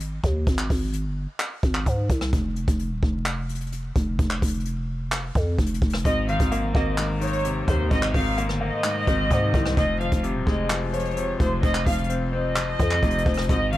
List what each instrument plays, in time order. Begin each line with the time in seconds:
Already playing: 808-style bass G#1
0.00 closed hi-hat
0.24 808-style bass D#2, kick, closed hi-hat
0.47 808-style bass G#1, kick, closed hi-hat
0.58 clap
0.70 808-style bass G#1, kick, open hi-hat
0.93 closed hi-hat
1.05 808-style bass G1
1.40 clap, closed hi-hat
1.63 808-style bass G#1, kick, closed hi-hat
1.75 clap
1.86 808-style bass G#2, kick, closed hi-hat
2.10 808-style bass C2, kick, closed hi-hat
2.21 cross-stick
2.33 808-style bass F1, kick, closed hi-hat
2.56 closed hi-hat
2.68 808-style bass F1, kick, closed hi-hat
2.79 closed hi-hat
2.91 808-style bass D#1
3.03 808-style bass F1, kick
3.26 clap, closed hi-hat
3.49 closed hi-hat
3.55 closed hi-hat
3.61 closed hi-hat
3.67 closed hi-hat
3.72 closed hi-hat
3.96 808-style bass F1, kick, closed hi-hat
4.19 808-style bass F1, kick, closed hi-hat
4.30 clap
4.42 808-style bass F1, kick, closed hi-hat, open hi-hat
4.48 closed hi-hat
4.54 closed hi-hat
4.60 closed hi-hat
4.65 closed hi-hat
5.12 clap, closed hi-hat
5.35 808-style bass F2, kick, closed hi-hat
5.59 808-style bass F1, kick, closed hi-hat
5.66 closed hi-hat
5.74 closed hi-hat
5.82 808-style bass F1, kick, closed hi-hat
5.90 cross-stick, closed hi-hat
5.97 closed hi-hat
6.05 808-style bass G#1, grand piano G#2, violin section D#5, kick, closed hi-hat
6.28 grand piano D#3, violin section F5, closed hi-hat
6.40 808-style bass G#1, kick, closed hi-hat
6.52 grand piano A#3, closed hi-hat
6.74 808-style bass G#1, grand piano A#3, violin section D#5, kick
6.98 grand piano G#2, clap, closed hi-hat
7.21 grand piano D#3, violin section C#5, closed hi-hat
7.27 closed hi-hat
7.33 closed hi-hat
7.39 closed hi-hat
7.44 grand piano C3, closed hi-hat
7.68 808-style bass D#2, grand piano D#3, violin section C5, kick, closed hi-hat
7.91 808-style bass G#1, grand piano G#2, violin section D#5, kick, closed hi-hat
8.03 clap
8.14 808-style bass G#1, grand piano D#3, violin section F5, kick, open hi-hat
8.38 grand piano A#3, closed hi-hat
8.49 808-style bass G1, cross-stick
8.61 grand piano A#3, violin section D#5
8.84 grand piano G#2, clap, closed hi-hat
9.07 808-style bass G#1, grand piano D#3, kick, closed hi-hat
9.31 808-style bass G#2, grand piano C3, kick, closed hi-hat
9.54 808-style bass C2, grand piano D#3, kick, closed hi-hat
9.66 cross-stick
9.77 808-style bass F1, grand piano F2, violin section D#5, kick, closed hi-hat
10.00 grand piano F3, violin section F5, closed hi-hat
10.12 808-style bass F1, kick, closed hi-hat
10.24 grand piano C3, closed hi-hat
10.35 808-style bass D#1
10.47 808-style bass F1, grand piano G#3, violin section D#5, kick
10.70 grand piano F2, clap, closed hi-hat
10.93 grand piano F3, violin section C#5, closed hi-hat
10.99 closed hi-hat
11.05 closed hi-hat
11.11 closed hi-hat
11.17 grand piano C3, closed hi-hat
11.40 808-style bass F1, grand piano F3, violin section C5, kick, closed hi-hat
11.63 808-style bass F1, grand piano F2, violin section D#5, kick, closed hi-hat
11.75 clap
11.86 808-style bass F1, grand piano F3, violin section F5, kick, closed hi-hat, open hi-hat
11.92 closed hi-hat
12.04 closed hi-hat
12.09 grand piano C4, closed hi-hat
12.33 grand piano C4, violin section D#5
12.56 grand piano F2, clap, closed hi-hat
12.79 808-style bass F2, grand piano F3, kick, closed hi-hat
12.91 clap
13.02 808-style bass F1, grand piano C3, kick, closed hi-hat
13.10 closed hi-hat
13.18 closed hi-hat
13.26 808-style bass F1, grand piano F3, kick, closed hi-hat
13.34 cross-stick, closed hi-hat
13.42 closed hi-hat
13.49 808-style bass G#1, grand piano G#2, violin section D#5, kick, closed hi-hat
13.73 grand piano D#3, violin section F5, closed hi-hat